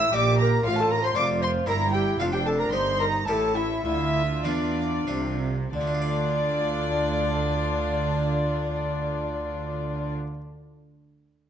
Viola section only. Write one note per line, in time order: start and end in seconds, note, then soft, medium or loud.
0.00 0.11 E4 medium
0.13 0.65 G4 medium
0.64 1.14 F4 medium
1.15 1.66 F4 medium
1.67 2.19 E4 medium
2.19 2.72 D4 medium
2.72 3.27 D#4 medium
3.27 3.83 E4 medium
3.85 5.44 F4 medium
5.74 10.13 F4 medium